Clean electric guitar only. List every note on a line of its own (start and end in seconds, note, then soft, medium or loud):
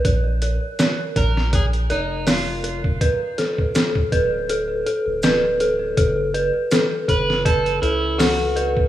1.17 1.55 A#4 loud
1.55 1.65 G#4 loud
1.92 2.25 D#4 medium
2.29 2.81 F4 medium
7.09 7.43 B4 loud
7.46 7.80 A4 loud
7.82 8.20 E4 medium
8.18 8.72 F#4 medium